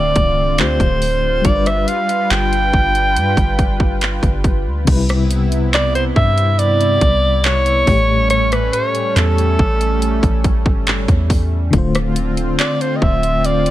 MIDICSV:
0, 0, Header, 1, 6, 480
1, 0, Start_track
1, 0, Key_signature, 0, "major"
1, 0, Tempo, 857143
1, 810, Time_signature, 4, 2, 24, 8
1, 7675, End_track
2, 0, Start_track
2, 0, Title_t, "Alto saxophone"
2, 0, Program_c, 0, 65
2, 0, Note_on_c, 0, 74, 108
2, 336, Note_on_c, 0, 72, 93
2, 344, Note_off_c, 0, 74, 0
2, 814, Note_on_c, 0, 74, 102
2, 822, Note_off_c, 0, 72, 0
2, 933, Note_on_c, 0, 76, 91
2, 941, Note_off_c, 0, 74, 0
2, 1053, Note_on_c, 0, 77, 103
2, 1061, Note_off_c, 0, 76, 0
2, 1292, Note_on_c, 0, 79, 110
2, 1300, Note_off_c, 0, 77, 0
2, 2251, Note_off_c, 0, 79, 0
2, 3215, Note_on_c, 0, 74, 107
2, 3324, Note_off_c, 0, 74, 0
2, 3333, Note_on_c, 0, 72, 89
2, 3386, Note_off_c, 0, 72, 0
2, 3450, Note_on_c, 0, 76, 108
2, 3690, Note_on_c, 0, 74, 118
2, 3699, Note_off_c, 0, 76, 0
2, 4169, Note_off_c, 0, 74, 0
2, 4172, Note_on_c, 0, 73, 102
2, 4628, Note_off_c, 0, 73, 0
2, 4650, Note_on_c, 0, 73, 110
2, 4772, Note_on_c, 0, 71, 92
2, 4780, Note_off_c, 0, 73, 0
2, 4889, Note_on_c, 0, 73, 102
2, 4897, Note_off_c, 0, 71, 0
2, 5129, Note_on_c, 0, 69, 96
2, 5138, Note_off_c, 0, 73, 0
2, 6089, Note_off_c, 0, 69, 0
2, 7055, Note_on_c, 0, 74, 90
2, 7175, Note_on_c, 0, 72, 80
2, 7184, Note_off_c, 0, 74, 0
2, 7260, Note_on_c, 0, 75, 68
2, 7268, Note_off_c, 0, 72, 0
2, 7295, Note_on_c, 0, 76, 93
2, 7304, Note_off_c, 0, 75, 0
2, 7535, Note_on_c, 0, 74, 102
2, 7544, Note_off_c, 0, 76, 0
2, 7675, Note_off_c, 0, 74, 0
2, 7675, End_track
3, 0, Start_track
3, 0, Title_t, "FM electric piano"
3, 0, Program_c, 1, 5
3, 0, Control_c, 1, 64, 127
3, 0, Note_on_c, 1, 50, 84
3, 0, Note_on_c, 1, 57, 73
3, 0, Note_on_c, 1, 65, 75
3, 0, Note_on_c, 1, 72, 89
3, 298, Note_off_c, 1, 50, 0
3, 305, Note_off_c, 1, 57, 0
3, 312, Note_off_c, 1, 65, 0
3, 319, Note_off_c, 1, 72, 0
3, 323, Note_on_c, 1, 50, 49
3, 332, Note_on_c, 1, 57, 45
3, 338, Note_on_c, 1, 65, 46
3, 344, Note_on_c, 1, 67, 56
3, 793, Note_on_c, 1, 55, 67
3, 806, Note_off_c, 1, 50, 0
3, 806, Note_on_c, 1, 62, 63
3, 811, Note_off_c, 1, 57, 0
3, 814, Note_off_c, 1, 65, 0
3, 817, Note_off_c, 1, 67, 0
3, 817, Control_c, 1, 64, 0
3, 820, Note_on_c, 1, 65, 64
3, 835, Note_on_c, 1, 70, 57
3, 859, Note_off_c, 1, 70, 0
3, 871, Note_on_c, 1, 71, 77
3, 926, Control_c, 1, 64, 127
3, 2699, Note_off_c, 1, 55, 0
3, 2706, Note_off_c, 1, 62, 0
3, 2713, Note_off_c, 1, 65, 0
3, 2715, Note_on_c, 1, 48, 79
3, 2728, Note_on_c, 1, 55, 70
3, 2737, Control_c, 1, 64, 0
3, 2738, Note_off_c, 1, 71, 0
3, 2743, Note_on_c, 1, 63, 57
3, 2756, Note_on_c, 1, 71, 87
3, 2773, Note_off_c, 1, 63, 0
3, 2779, Note_on_c, 1, 64, 72
3, 2823, Control_c, 1, 64, 127
3, 4380, Note_off_c, 1, 48, 0
3, 4387, Note_off_c, 1, 55, 0
3, 4395, Note_on_c, 1, 45, 71
3, 4400, Note_off_c, 1, 71, 0
3, 4409, Note_on_c, 1, 57, 64
3, 4412, Note_off_c, 1, 64, 0
3, 4417, Control_c, 1, 64, 0
3, 4422, Note_on_c, 1, 67, 62
3, 4436, Note_on_c, 1, 73, 74
3, 4522, Control_c, 1, 64, 127
3, 6300, Note_off_c, 1, 45, 0
3, 6307, Note_off_c, 1, 57, 0
3, 6314, Note_off_c, 1, 67, 0
3, 6320, Note_off_c, 1, 73, 0
3, 6555, Note_on_c, 1, 50, 82
3, 6569, Note_on_c, 1, 57, 74
3, 6577, Control_c, 1, 64, 0
3, 6583, Note_on_c, 1, 65, 73
3, 6598, Note_on_c, 1, 72, 86
3, 6671, Control_c, 1, 64, 127
3, 7675, Note_off_c, 1, 50, 0
3, 7675, Note_off_c, 1, 57, 0
3, 7675, Note_off_c, 1, 65, 0
3, 7675, Note_off_c, 1, 72, 0
3, 7675, End_track
4, 0, Start_track
4, 0, Title_t, "Analog synth pad"
4, 0, Program_c, 2, 89
4, 0, Note_on_c, 2, 50, 84
4, 0, Note_on_c, 2, 60, 77
4, 0, Note_on_c, 2, 65, 95
4, 791, Note_off_c, 2, 50, 0
4, 791, Note_off_c, 2, 60, 0
4, 811, Note_on_c, 2, 55, 87
4, 812, Note_on_c, 2, 71, 94
4, 2708, Note_off_c, 2, 65, 0
4, 2711, Note_off_c, 2, 55, 0
4, 2711, Note_off_c, 2, 71, 0
4, 2725, Note_on_c, 2, 59, 81
4, 2726, Note_on_c, 2, 64, 94
4, 2727, Note_on_c, 2, 48, 90
4, 4391, Note_off_c, 2, 48, 0
4, 4391, Note_off_c, 2, 59, 0
4, 4391, Note_off_c, 2, 64, 0
4, 4407, Note_on_c, 2, 55, 81
4, 4407, Note_on_c, 2, 57, 78
4, 4407, Note_on_c, 2, 61, 94
4, 6547, Note_off_c, 2, 55, 0
4, 6547, Note_off_c, 2, 57, 0
4, 6547, Note_off_c, 2, 61, 0
4, 6570, Note_on_c, 2, 50, 88
4, 6570, Note_on_c, 2, 65, 95
4, 6571, Note_on_c, 2, 60, 80
4, 7675, Note_off_c, 2, 50, 0
4, 7675, Note_off_c, 2, 60, 0
4, 7675, Note_off_c, 2, 65, 0
4, 7675, End_track
5, 0, Start_track
5, 0, Title_t, "808-style bass"
5, 0, Program_c, 3, 38
5, 0, Note_on_c, 3, 26, 105
5, 72, Note_off_c, 3, 26, 0
5, 89, Note_on_c, 3, 24, 112
5, 332, Note_on_c, 3, 38, 94
5, 340, Note_off_c, 3, 24, 0
5, 445, Note_off_c, 3, 38, 0
5, 448, Note_on_c, 3, 26, 107
5, 794, Note_off_c, 3, 26, 0
5, 812, Note_on_c, 3, 31, 112
5, 1041, Note_off_c, 3, 31, 0
5, 1290, Note_on_c, 3, 31, 101
5, 1520, Note_off_c, 3, 31, 0
5, 1533, Note_on_c, 3, 31, 104
5, 1770, Note_on_c, 3, 43, 97
5, 1778, Note_off_c, 3, 31, 0
5, 1884, Note_off_c, 3, 43, 0
5, 1889, Note_on_c, 3, 31, 100
5, 2350, Note_off_c, 3, 31, 0
5, 2369, Note_on_c, 3, 31, 109
5, 2611, Note_on_c, 3, 38, 97
5, 2619, Note_off_c, 3, 31, 0
5, 2724, Note_off_c, 3, 38, 0
5, 2731, Note_on_c, 3, 36, 119
5, 3428, Note_off_c, 3, 36, 0
5, 3452, Note_on_c, 3, 43, 103
5, 3911, Note_off_c, 3, 43, 0
5, 3929, Note_on_c, 3, 36, 113
5, 4390, Note_off_c, 3, 36, 0
5, 4410, Note_on_c, 3, 33, 105
5, 4871, Note_off_c, 3, 33, 0
5, 5129, Note_on_c, 3, 40, 105
5, 5360, Note_off_c, 3, 40, 0
5, 5372, Note_on_c, 3, 33, 106
5, 5716, Note_off_c, 3, 33, 0
5, 5729, Note_on_c, 3, 33, 112
5, 5969, Note_on_c, 3, 31, 101
5, 5978, Note_off_c, 3, 33, 0
5, 6197, Note_off_c, 3, 31, 0
5, 6208, Note_on_c, 3, 40, 101
5, 6554, Note_off_c, 3, 40, 0
5, 6570, Note_on_c, 3, 26, 114
5, 7031, Note_off_c, 3, 26, 0
5, 7291, Note_on_c, 3, 26, 106
5, 7675, Note_off_c, 3, 26, 0
5, 7675, End_track
6, 0, Start_track
6, 0, Title_t, "Drums"
6, 87, Note_on_c, 9, 42, 60
6, 89, Note_on_c, 9, 36, 84
6, 143, Note_off_c, 9, 42, 0
6, 145, Note_off_c, 9, 36, 0
6, 327, Note_on_c, 9, 42, 74
6, 334, Note_on_c, 9, 39, 115
6, 383, Note_off_c, 9, 42, 0
6, 390, Note_off_c, 9, 39, 0
6, 448, Note_on_c, 9, 36, 84
6, 451, Note_on_c, 9, 42, 47
6, 504, Note_off_c, 9, 36, 0
6, 507, Note_off_c, 9, 42, 0
6, 570, Note_on_c, 9, 46, 59
6, 626, Note_off_c, 9, 46, 0
6, 810, Note_on_c, 9, 42, 81
6, 811, Note_on_c, 9, 36, 108
6, 866, Note_off_c, 9, 42, 0
6, 867, Note_off_c, 9, 36, 0
6, 931, Note_on_c, 9, 42, 57
6, 934, Note_on_c, 9, 37, 99
6, 987, Note_off_c, 9, 42, 0
6, 990, Note_off_c, 9, 37, 0
6, 1052, Note_on_c, 9, 42, 78
6, 1108, Note_off_c, 9, 42, 0
6, 1171, Note_on_c, 9, 42, 52
6, 1227, Note_off_c, 9, 42, 0
6, 1292, Note_on_c, 9, 42, 76
6, 1296, Note_on_c, 9, 39, 118
6, 1348, Note_off_c, 9, 42, 0
6, 1352, Note_off_c, 9, 39, 0
6, 1415, Note_on_c, 9, 42, 47
6, 1471, Note_off_c, 9, 42, 0
6, 1532, Note_on_c, 9, 36, 93
6, 1588, Note_off_c, 9, 36, 0
6, 1652, Note_on_c, 9, 42, 53
6, 1708, Note_off_c, 9, 42, 0
6, 1772, Note_on_c, 9, 42, 75
6, 1828, Note_off_c, 9, 42, 0
6, 1888, Note_on_c, 9, 36, 90
6, 1892, Note_on_c, 9, 42, 49
6, 1944, Note_off_c, 9, 36, 0
6, 1948, Note_off_c, 9, 42, 0
6, 2009, Note_on_c, 9, 36, 93
6, 2009, Note_on_c, 9, 42, 63
6, 2065, Note_off_c, 9, 36, 0
6, 2065, Note_off_c, 9, 42, 0
6, 2128, Note_on_c, 9, 36, 95
6, 2184, Note_off_c, 9, 36, 0
6, 2248, Note_on_c, 9, 42, 78
6, 2255, Note_on_c, 9, 39, 116
6, 2304, Note_off_c, 9, 42, 0
6, 2311, Note_off_c, 9, 39, 0
6, 2367, Note_on_c, 9, 36, 84
6, 2371, Note_on_c, 9, 42, 44
6, 2423, Note_off_c, 9, 36, 0
6, 2427, Note_off_c, 9, 42, 0
6, 2488, Note_on_c, 9, 36, 90
6, 2490, Note_on_c, 9, 42, 55
6, 2544, Note_off_c, 9, 36, 0
6, 2546, Note_off_c, 9, 42, 0
6, 2728, Note_on_c, 9, 42, 80
6, 2729, Note_on_c, 9, 36, 103
6, 2729, Note_on_c, 9, 49, 109
6, 2784, Note_off_c, 9, 42, 0
6, 2785, Note_off_c, 9, 36, 0
6, 2785, Note_off_c, 9, 49, 0
6, 2852, Note_on_c, 9, 42, 58
6, 2855, Note_on_c, 9, 37, 99
6, 2908, Note_off_c, 9, 42, 0
6, 2911, Note_off_c, 9, 37, 0
6, 2971, Note_on_c, 9, 42, 82
6, 3027, Note_off_c, 9, 42, 0
6, 3091, Note_on_c, 9, 42, 55
6, 3147, Note_off_c, 9, 42, 0
6, 3211, Note_on_c, 9, 42, 74
6, 3215, Note_on_c, 9, 39, 115
6, 3267, Note_off_c, 9, 42, 0
6, 3271, Note_off_c, 9, 39, 0
6, 3334, Note_on_c, 9, 42, 48
6, 3390, Note_off_c, 9, 42, 0
6, 3450, Note_on_c, 9, 36, 93
6, 3506, Note_off_c, 9, 36, 0
6, 3570, Note_on_c, 9, 42, 51
6, 3626, Note_off_c, 9, 42, 0
6, 3690, Note_on_c, 9, 42, 72
6, 3746, Note_off_c, 9, 42, 0
6, 3811, Note_on_c, 9, 42, 52
6, 3867, Note_off_c, 9, 42, 0
6, 3927, Note_on_c, 9, 42, 65
6, 3928, Note_on_c, 9, 36, 89
6, 3983, Note_off_c, 9, 42, 0
6, 3984, Note_off_c, 9, 36, 0
6, 4166, Note_on_c, 9, 42, 76
6, 4173, Note_on_c, 9, 39, 118
6, 4222, Note_off_c, 9, 42, 0
6, 4229, Note_off_c, 9, 39, 0
6, 4289, Note_on_c, 9, 42, 49
6, 4345, Note_off_c, 9, 42, 0
6, 4408, Note_on_c, 9, 46, 64
6, 4409, Note_on_c, 9, 36, 105
6, 4464, Note_off_c, 9, 46, 0
6, 4465, Note_off_c, 9, 36, 0
6, 4648, Note_on_c, 9, 42, 82
6, 4704, Note_off_c, 9, 42, 0
6, 4771, Note_on_c, 9, 42, 56
6, 4775, Note_on_c, 9, 37, 104
6, 4827, Note_off_c, 9, 42, 0
6, 4831, Note_off_c, 9, 37, 0
6, 4891, Note_on_c, 9, 42, 81
6, 4947, Note_off_c, 9, 42, 0
6, 5010, Note_on_c, 9, 42, 55
6, 5066, Note_off_c, 9, 42, 0
6, 5132, Note_on_c, 9, 42, 75
6, 5136, Note_on_c, 9, 39, 118
6, 5188, Note_off_c, 9, 42, 0
6, 5192, Note_off_c, 9, 39, 0
6, 5255, Note_on_c, 9, 42, 48
6, 5311, Note_off_c, 9, 42, 0
6, 5372, Note_on_c, 9, 36, 99
6, 5428, Note_off_c, 9, 36, 0
6, 5493, Note_on_c, 9, 42, 52
6, 5549, Note_off_c, 9, 42, 0
6, 5612, Note_on_c, 9, 42, 75
6, 5668, Note_off_c, 9, 42, 0
6, 5728, Note_on_c, 9, 36, 93
6, 5732, Note_on_c, 9, 42, 52
6, 5784, Note_off_c, 9, 36, 0
6, 5788, Note_off_c, 9, 42, 0
6, 5849, Note_on_c, 9, 36, 91
6, 5849, Note_on_c, 9, 42, 66
6, 5905, Note_off_c, 9, 36, 0
6, 5905, Note_off_c, 9, 42, 0
6, 5968, Note_on_c, 9, 36, 102
6, 6024, Note_off_c, 9, 36, 0
6, 6086, Note_on_c, 9, 42, 77
6, 6093, Note_on_c, 9, 39, 117
6, 6142, Note_off_c, 9, 42, 0
6, 6149, Note_off_c, 9, 39, 0
6, 6207, Note_on_c, 9, 36, 88
6, 6210, Note_on_c, 9, 42, 47
6, 6263, Note_off_c, 9, 36, 0
6, 6266, Note_off_c, 9, 42, 0
6, 6328, Note_on_c, 9, 36, 90
6, 6329, Note_on_c, 9, 46, 61
6, 6384, Note_off_c, 9, 36, 0
6, 6385, Note_off_c, 9, 46, 0
6, 6569, Note_on_c, 9, 42, 81
6, 6570, Note_on_c, 9, 36, 104
6, 6625, Note_off_c, 9, 42, 0
6, 6626, Note_off_c, 9, 36, 0
6, 6691, Note_on_c, 9, 42, 58
6, 6694, Note_on_c, 9, 37, 102
6, 6747, Note_off_c, 9, 42, 0
6, 6750, Note_off_c, 9, 37, 0
6, 6810, Note_on_c, 9, 42, 81
6, 6866, Note_off_c, 9, 42, 0
6, 6929, Note_on_c, 9, 42, 57
6, 6985, Note_off_c, 9, 42, 0
6, 7051, Note_on_c, 9, 42, 76
6, 7054, Note_on_c, 9, 39, 119
6, 7107, Note_off_c, 9, 42, 0
6, 7110, Note_off_c, 9, 39, 0
6, 7174, Note_on_c, 9, 42, 47
6, 7230, Note_off_c, 9, 42, 0
6, 7291, Note_on_c, 9, 36, 98
6, 7347, Note_off_c, 9, 36, 0
6, 7411, Note_on_c, 9, 42, 53
6, 7467, Note_off_c, 9, 42, 0
6, 7529, Note_on_c, 9, 42, 71
6, 7585, Note_off_c, 9, 42, 0
6, 7650, Note_on_c, 9, 42, 55
6, 7675, Note_off_c, 9, 42, 0
6, 7675, End_track
0, 0, End_of_file